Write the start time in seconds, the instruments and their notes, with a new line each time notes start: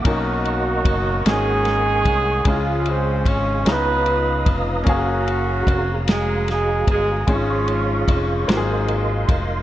0.04 fingered electric bass B1, grand piano B2 A#3 C#4 D#4 F#4 A#4, horn section F#3 A#3 D#4 F#4, tonewheel organ A#4 D#5 A#5 C#6, kick, ride bell
0.45 ride bell
0.85 fingered electric bass F#1, kick, ride bell
1.25 fingered electric bass G#1, grand piano G#2 A#3 C4 D#4 F#4 G#4, horn section G#3 C#4 D#4 G#4, tonewheel organ A#4 F#5 G#5, snare, ride bell
1.32 grand piano C#4
1.65 snare, ride bell
2.05 fingered electric bass C2, kick, ride bell
2.44 fingered electric bass C#2, grand piano C#3 G#3 C#4 E4 G#4, horn section G#3 C#4, tonewheel organ G#4 F5, kick, ride bell
2.48 horn section F3 F4
2.54 grand piano F4
2.86 horn section C4 C5, ride bell
3.26 fingered electric bass G#1, horn section C#4 C#5, kick, ride bell
3.65 fingered electric bass C#2, grand piano C#3 B3 C#4 D#4 E4 A#5, tonewheel organ B4 A#5 D#6, snare, ride bell
3.69 horn section B3 D#4 F4 B4, grand piano F4
4.06 ride bell
4.46 fingered electric bass F1, kick, ride bell
4.83 fingered electric bass F#1, grand piano A#3 C#4 F5, tonewheel organ F#4 G#4, kick, ride bell
4.87 horn section F#3 A#3 C#4 F#4, grand piano F#4 G#4
5.28 ride bell
5.67 fingered electric bass F1, kick, ride bell
6.08 horn section G#3 G#4, snare, ride bell
6.48 horn section G#3 G#4, snare, ride bell
6.87 fingered electric bass G1, kick, ride bell
6.92 horn section G#3 G#4
7.27 fingered electric bass G#1, grand piano G#2 G#3 C#4 F4 G#4 C#5, tonewheel organ C#5 C#6, kick, ride bell
7.31 horn section F3 G#3 C#4 F4
7.68 ride bell
8.08 fingered electric bass F1, kick, ride bell
8.47 fingered electric bass G#1, grand piano G#2 F#3 A#3 F4 G4 C5, tonewheel organ A#4 D#5 C6, snare, ride bell
8.57 grand piano G#4
8.88 ride bell
9.29 fingered electric bass F1, kick, ride bell